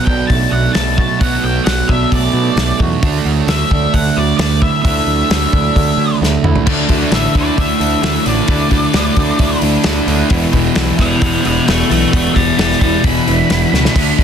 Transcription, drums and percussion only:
0.07 kick
0.30 kick, open hi-hat
0.75 snare, open hi-hat
0.98 kick
1.21 kick, open hi-hat
1.66 snare, open hi-hat
1.89 kick
2.12 kick, open hi-hat
2.57 snare, open hi-hat
2.80 kick
3.03 kick, open hi-hat
3.48 snare, open hi-hat
3.71 kick
3.94 kick, open hi-hat
4.39 snare, open hi-hat
4.62 kick
4.85 kick, open hi-hat
5.30 snare, open hi-hat
5.53 kick
5.76 kick, open hi-hat
6.23 snare
6.44 mid tom
6.56 floor tom
6.67 kick, crash
6.89 kick, open hi-hat
7.12 snare, open hi-hat
7.35 kick, open hi-hat
7.58 kick, open hi-hat
7.81 open hi-hat
8.03 snare, open hi-hat
8.26 open hi-hat
8.48 kick, open hi-hat
8.71 kick, open hi-hat
8.94 snare, open hi-hat
9.16 kick, open hi-hat
9.39 kick, open hi-hat
9.62 open hi-hat
9.84 snare, open hi-hat
10.08 open hi-hat
10.30 kick, open hi-hat
10.53 kick, open hi-hat
10.75 snare, open hi-hat
10.99 kick, snare, open hi-hat
11.22 kick, open hi-hat
11.45 open hi-hat
11.68 snare, open hi-hat
11.91 open hi-hat
12.13 kick, open hi-hat
12.36 kick, open hi-hat
12.59 snare, open hi-hat
12.71 snare
12.81 kick, open hi-hat
13.04 kick, open hi-hat
13.28 open hi-hat
13.50 snare, open hi-hat
13.74 snare
13.85 snare
13.96 kick, open hi-hat, crash
14.19 kick, open hi-hat

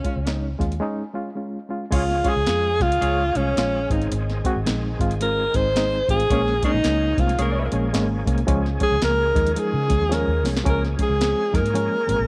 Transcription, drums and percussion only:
0.04 kick, closed hi-hat
0.27 snare, closed hi-hat
0.60 kick, snare, closed hi-hat
0.72 closed hi-hat
1.92 kick, closed hi-hat, crash
2.10 snare
2.24 kick, closed hi-hat
2.47 snare, closed hi-hat
2.80 kick, snare, closed hi-hat
2.92 closed hi-hat
3.02 closed hi-hat
3.35 closed hi-hat
3.57 snare, closed hi-hat
3.90 kick, closed hi-hat
4.02 closed hi-hat
4.12 closed hi-hat
4.30 snare
4.45 kick, closed hi-hat
4.66 snare, closed hi-hat
5.00 kick, closed hi-hat
5.11 closed hi-hat
5.21 closed hi-hat
5.54 kick, closed hi-hat
5.76 snare, closed hi-hat
6.09 kick, closed hi-hat
6.20 closed hi-hat
6.30 kick, closed hi-hat
6.48 snare
6.63 kick, closed hi-hat
6.84 snare, closed hi-hat
7.17 kick, snare, closed hi-hat
7.29 closed hi-hat
7.39 closed hi-hat
7.72 closed hi-hat
7.94 snare, closed hi-hat
8.27 kick, closed hi-hat
8.38 closed hi-hat
8.48 kick, closed hi-hat
8.66 snare
8.80 kick, closed hi-hat
9.02 snare, closed hi-hat
9.35 kick, closed hi-hat
9.47 closed hi-hat
9.56 closed hi-hat
9.90 kick, snare, closed hi-hat
10.12 snare, closed hi-hat
10.45 snare, open hi-hat
10.57 snare
10.66 kick, closed hi-hat
10.85 snare
10.99 kick, closed hi-hat
11.21 snare, closed hi-hat
11.54 kick, snare, closed hi-hat
11.66 closed hi-hat
11.75 closed hi-hat
12.09 closed hi-hat

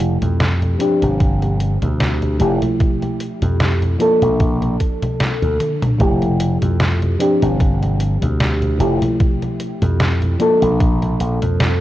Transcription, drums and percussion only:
0.00 closed hi-hat
0.22 closed hi-hat, high conga
0.40 snare, closed hi-hat, high conga
0.62 closed hi-hat, high conga
0.80 closed hi-hat
1.02 closed hi-hat, high conga
1.20 kick, closed hi-hat, high conga
1.42 closed hi-hat, high conga
1.60 closed hi-hat
1.82 closed hi-hat, high conga
2.00 snare, closed hi-hat, high conga
2.22 closed hi-hat, high conga
2.40 closed hi-hat
2.62 closed hi-hat, high conga
2.80 kick, closed hi-hat, high conga
3.02 closed hi-hat, high conga
3.20 closed hi-hat
3.42 closed hi-hat, high conga
3.60 snare, closed hi-hat, high conga
3.82 closed hi-hat, high conga
4.00 closed hi-hat
4.22 closed hi-hat, high conga
4.40 kick, closed hi-hat, high conga
4.62 closed hi-hat, high conga
4.80 kick, closed hi-hat
5.02 closed hi-hat, high conga
5.20 snare, closed hi-hat, high conga
5.42 closed hi-hat, high conga
5.60 closed hi-hat, high tom
5.82 closed hi-hat, mid tom, high conga
6.00 kick, closed hi-hat, high conga
6.22 closed hi-hat, high conga
6.40 closed hi-hat
6.62 closed hi-hat, high conga
6.80 snare, closed hi-hat, high conga
7.02 closed hi-hat, high conga
7.20 closed hi-hat
7.42 closed hi-hat, high conga
7.60 kick, closed hi-hat, high conga
7.83 closed hi-hat, high conga
8.00 closed hi-hat
8.22 closed hi-hat, high conga
8.40 snare, closed hi-hat, high conga
8.62 closed hi-hat, high conga
8.80 closed hi-hat
9.02 closed hi-hat, high conga
9.20 kick, closed hi-hat, high conga
9.42 closed hi-hat, high conga
9.60 closed hi-hat
9.82 closed hi-hat, high conga
10.00 snare, closed hi-hat, high conga
10.22 closed hi-hat, high conga
10.40 closed hi-hat
10.62 closed hi-hat, high conga
10.80 kick, closed hi-hat, high conga
11.02 closed hi-hat, high conga
11.20 closed hi-hat
11.42 closed hi-hat, high conga
11.60 snare, closed hi-hat, high conga

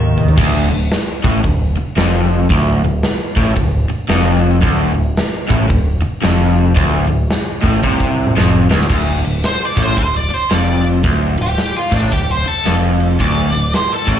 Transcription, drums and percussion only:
0.18 floor tom
0.28 floor tom
0.38 kick, crash
0.91 snare, open hi-hat
1.24 kick
1.44 kick, open hi-hat
1.97 snare, open hi-hat
2.50 kick, open hi-hat
3.03 snare, open hi-hat
3.37 kick
3.56 kick, open hi-hat
4.09 snare, open hi-hat
4.63 kick, open hi-hat
5.17 snare, open hi-hat
5.50 kick
5.70 kick, open hi-hat
6.23 snare, open hi-hat
6.77 kick, open hi-hat
7.30 snare, open hi-hat
7.64 kick
7.84 kick
8.00 kick
8.27 mid tom
8.38 snare
8.71 snare
8.81 snare
8.90 kick, crash
9.25 ride
9.44 snare, ride
9.77 kick, ride
9.97 kick, ride
10.30 ride
10.50 snare, ride
10.84 ride
11.04 kick, ride
11.38 ride
11.58 snare, ride
11.92 kick, ride
12.12 kick, ride
12.47 ride
12.66 snare, ride
13.00 ride
13.20 kick, ride
13.54 ride
13.74 snare, ride
14.08 kick, ride

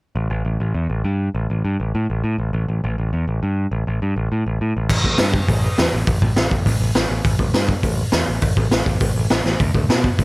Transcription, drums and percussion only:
4.90 kick, crash
5.04 kick
5.18 snare, open hi-hat
5.34 kick
5.48 kick, open hi-hat
5.78 snare, open hi-hat
6.07 kick, open hi-hat
6.22 kick
6.36 snare, open hi-hat
6.51 kick
6.66 kick, open hi-hat
6.95 snare, open hi-hat
7.25 kick, open hi-hat
7.39 kick
7.54 snare, open hi-hat
7.69 kick
7.83 kick, open hi-hat
8.12 snare, open hi-hat
8.42 kick, open hi-hat
8.57 kick
8.71 snare, open hi-hat
8.86 kick
9.00 kick, open hi-hat
9.30 snare, open hi-hat
9.45 snare
9.60 kick, open hi-hat
9.75 kick
9.90 snare, open hi-hat
10.04 kick
10.19 kick, open hi-hat

